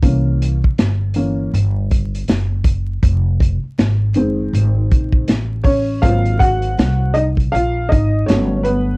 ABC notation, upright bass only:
X:1
M:4/4
L:1/16
Q:"Swing 16ths" 1/4=80
K:Abmix
V:1 name="Upright bass" clef=bass
C,,3 z =G,,,4 G,,,4 _G,,,4 | F,,,3 z A,,,2 G,,,2 A,,,2 B,,,2 =A,,,4 | A,,,4 C,,4 B,,,2 A,,,2 =G,,,4 |]